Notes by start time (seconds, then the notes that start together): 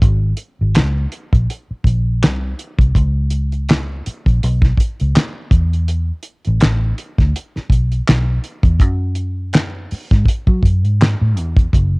0.02 G#1, kick, closed hi-hat
0.37 closed hi-hat
0.61 G#1
0.75 C#2, snare, clap, closed hi-hat
1.12 closed hi-hat
1.33 A#1, kick, closed hi-hat
1.50 closed hi-hat
1.71 muted fingered electric bass stroke
1.84 A#1, kick, closed hi-hat
2.23 C2, snare, clap, closed hi-hat
2.59 closed hi-hat
2.79 C2, kick, closed hi-hat
2.95 C#2, kick, closed hi-hat
3.30 closed hi-hat
3.52 closed hi-hat
3.69 snare, clap, closed hi-hat
4.06 muted fingered electric bass stroke, closed hi-hat
4.26 A#1, kick, closed hi-hat
4.43 B1, closed hi-hat
4.62 kick, snare
4.77 kick, closed hi-hat
5.00 C#2, closed hi-hat
5.16 snare, clap, closed hi-hat
5.51 E2, kick, closed hi-hat
5.73 closed hi-hat
5.88 closed hi-hat
6.23 closed hi-hat
6.45 A1, closed hi-hat
6.60 A1, snare, clap, closed hi-hat
6.98 closed hi-hat
7.18 D2, kick, snare
7.36 closed hi-hat
7.56 muted fingered electric bass stroke, snare
7.70 B1, kick, closed hi-hat
7.92 closed hi-hat
8.08 B1, snare, clap, closed hi-hat
8.44 closed hi-hat
8.63 E2, kick, closed hi-hat
8.80 F#2, kick, closed hi-hat
9.15 closed hi-hat
9.53 snare, clap, closed hi-hat
9.91 muted fingered electric bass stroke, open hi-hat
10.11 G#2, kick, snare, closed hi-hat
10.26 kick, closed hi-hat
10.47 F#3, kick
10.63 F#2, kick, closed hi-hat
10.85 G#2, closed hi-hat
11.01 snare, clap, closed hi-hat
11.21 A2
11.37 E2, closed hi-hat
11.57 kick, closed hi-hat
11.73 F#1, kick, closed hi-hat